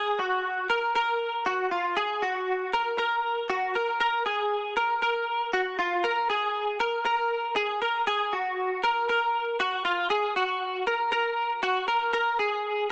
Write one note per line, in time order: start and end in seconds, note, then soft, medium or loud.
0.00 0.18 G#4 medium
0.19 0.67 F#4 medium
0.70 0.94 A#4 medium
0.95 1.43 A#4 medium
1.46 1.71 F#4 medium
1.71 1.97 F4 medium
1.97 2.22 G#4 medium
2.22 2.70 F#4 medium
2.73 2.97 A#4 medium
2.98 3.46 A#4 medium
3.50 3.75 F#4 medium
3.75 3.99 A#4 medium
4.00 4.25 A#4 medium
4.26 4.73 G#4 medium
4.77 5.01 A#4 medium
5.02 5.50 A#4 medium
5.53 5.78 F#4 medium
5.79 6.04 F4 medium
6.04 6.29 A#4 medium
6.30 6.77 G#4 medium
6.80 7.04 A#4 medium
7.05 7.53 A#4 medium
7.56 7.81 G#4 medium
7.82 8.07 A#4 medium
8.07 8.32 G#4 medium
8.33 8.80 F#4 medium
8.84 9.08 A#4 medium
9.09 9.57 A#4 medium
9.60 9.84 F#4 medium
9.85 10.10 F4 medium
10.10 10.36 G#4 medium
10.36 10.84 F#4 medium
10.87 11.11 A#4 medium
11.12 11.60 A#4 medium
11.63 11.87 F#4 medium
11.88 12.12 A#4 medium
12.13 12.39 A#4 medium
12.39 12.87 G#4 medium